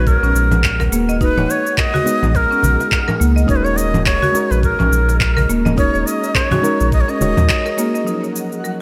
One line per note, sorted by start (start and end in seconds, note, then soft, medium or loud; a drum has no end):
0.00 0.17 A#1 loud
0.00 1.19 G#3 medium
0.00 2.05 B3 medium
0.00 1.20 D#4 medium
0.00 0.21 F#4 loud
0.00 1.21 F#4 medium
0.00 8.03 G#4 medium
0.00 3.51 B4 loud
0.00 3.46 F#5 medium
0.07 0.93 A#4 medium
0.07 kick loud
0.07 shaker soft
0.23 0.33 A#1 medium
0.23 0.35 C#4 medium
0.23 shaker soft
0.34 0.89 A#1 medium
0.34 shaker medium
0.51 cajon slap medium
0.51 low conga medium
0.51 shaker soft
0.64 kick loud
0.64 clap loud
0.64 shaker soft
0.80 0.92 A#4 loud
0.80 cajon bass medium
0.80 cajon slap soft
0.80 shaker soft
0.92 1.33 D#1 medium
0.92 1.08 A#3 loud
0.92 shaker medium
1.09 1.16 D#5 medium
1.09 shaker soft
1.19 2.03 G#3 medium
1.19 2.03 D#4 medium
1.19 1.37 D#4 medium
1.19 2.04 F#4 medium
1.19 1.52 B4 loud
1.19 kick loud
1.19 shaker soft
1.37 1.47 D#1 medium
1.37 1.77 C#5 medium
1.37 low conga medium
1.37 shaker soft
1.50 1.80 C#5 loud
1.50 shaker medium
1.67 shaker soft
1.78 1.93 A#4 medium
1.78 2.37 D#5 loud
1.78 kick loud
1.78 clap loud
1.78 shaker soft
1.94 2.50 F#4 loud
1.94 cajon bass medium
1.94 shaker soft
2.04 3.45 G#3 medium
2.04 3.46 B3 medium
2.04 3.46 D#4 medium
2.04 3.46 F#4 medium
2.04 cajon slap medium
2.04 shaker medium
2.23 2.46 A#1 medium
2.23 low conga medium
2.23 shaker soft
2.35 3.21 A#4 loud
2.35 kick loud
2.35 shaker soft
2.51 2.63 C#4 medium
2.51 shaker soft
2.63 2.77 A#1 medium
2.63 cajon bass medium
2.63 cajon slap medium
2.63 shaker medium
2.80 cajon slap medium
2.80 shaker soft
2.92 kick loud
2.92 clap loud
2.92 shaker soft
3.08 3.20 A#4 loud
3.08 low conga medium
3.08 shaker soft
3.20 3.45 C#2 medium
3.20 3.36 A#3 loud
3.20 shaker medium
3.36 3.44 D#5 medium
3.36 shaker soft
3.46 4.19 D#1 loud
3.46 4.30 G#3 loud
3.46 4.31 C#4 medium
3.46 4.31 D#4 medium
3.46 3.64 D#4 medium
3.46 4.32 F#4 medium
3.46 3.58 C#5 loud
3.46 8.03 D#5 medium
3.46 8.03 A#5 medium
3.46 kick loud
3.46 shaker soft
3.50 4.33 A#4 loud
3.56 3.66 B4 medium
3.64 3.78 C#5 loud
3.64 4.05 C#5 medium
3.64 shaker soft
3.77 4.05 D#5 loud
3.77 shaker medium
3.94 low conga medium
3.94 shaker soft
4.06 4.21 A#4 medium
4.06 4.52 C#5 loud
4.06 kick loud
4.06 clap loud
4.06 shaker soft
4.22 4.78 F#4 loud
4.22 cajon bass medium
4.22 shaker soft
4.32 5.73 G#3 medium
4.32 5.74 C#4 medium
4.32 5.75 D#4 medium
4.32 5.75 F#4 medium
4.32 cajon slap medium
4.32 shaker medium
4.36 5.76 A#4 loud
4.51 4.75 A#1 medium
4.51 4.63 B4 medium
4.51 shaker soft
4.63 5.46 A#4 medium
4.63 kick loud
4.63 shaker soft
4.79 4.90 A#1 medium
4.79 4.91 C#4 medium
4.79 low conga medium
4.79 shaker soft
4.92 5.46 A#1 loud
4.92 shaker medium
5.09 cajon slap medium
5.09 shaker soft
5.21 kick loud
5.21 clap loud
5.21 shaker soft
5.37 5.49 A#4 loud
5.37 cajon bass medium
5.37 cajon slap soft
5.37 shaker soft
5.49 5.90 D#1 medium
5.49 5.65 A#3 loud
5.49 shaker medium
5.65 5.73 D#5 medium
5.65 low conga medium
5.65 shaker soft
5.75 6.59 G#3 medium
5.75 6.60 C#4 medium
5.75 6.60 D#4 medium
5.75 5.93 D#4 medium
5.75 6.60 F#4 medium
5.75 6.61 A#4 medium
5.75 6.08 C#5 loud
5.75 kick loud
5.75 shaker soft
5.94 6.05 D#1 medium
5.94 6.34 C#5 medium
5.94 shaker soft
6.06 6.37 D#5 loud
6.06 shaker medium
6.24 shaker soft
6.35 6.50 A#4 medium
6.35 6.92 C#5 loud
6.35 kick loud
6.35 clap loud
6.35 shaker soft
6.51 7.07 F#4 loud
6.51 cajon bass medium
6.51 low conga medium
6.51 shaker soft
6.62 7.17 G#3 loud
6.62 7.18 C#4 medium
6.62 7.18 D#4 medium
6.62 7.18 F#4 medium
6.62 7.18 A#4 loud
6.62 cajon slap medium
6.62 shaker medium
6.80 7.04 A#1 loud
6.80 shaker soft
6.92 7.02 D#5 medium
6.92 kick loud
6.92 shaker soft
7.01 7.11 C#5 medium
7.08 7.20 C#4 medium
7.08 7.79 D#5 loud
7.08 shaker soft
7.20 7.35 D#1 medium
7.20 7.75 G#3 loud
7.20 7.75 C#4 medium
7.20 7.75 D#4 medium
7.20 7.75 F#4 medium
7.20 7.76 C#5 loud
7.20 cajon bass medium
7.20 cajon slap medium
7.20 shaker medium
7.37 7.48 D#2 loud
7.37 cajon slap medium
7.37 low conga medium
7.37 shaker soft
7.49 kick loud
7.49 clap loud
7.49 shaker soft
7.66 7.77 A#4 loud
7.66 shaker soft
7.77 8.03 G#3 medium
7.77 7.94 A#3 loud
7.77 8.03 C#4 medium
7.77 8.04 D#4 medium
7.77 8.04 F#4 medium
7.77 8.04 A#4 loud
7.77 shaker medium
7.94 8.01 D#5 medium
7.94 shaker soft
8.04 8.82 F3 medium
8.04 8.82 F#3 medium
8.04 8.82 A#3 medium
8.04 8.82 C#4 medium
8.04 8.82 D#4 medium
8.04 8.22 D#4 medium
8.04 8.82 C#5 medium
8.04 8.82 D#5 medium
8.04 8.82 F#5 medium
8.04 shaker soft
8.08 8.82 A#4 medium
8.23 8.63 C#5 medium
8.23 shaker soft
8.36 shaker medium
8.52 shaker soft
8.64 8.79 A#4 medium
8.64 shaker soft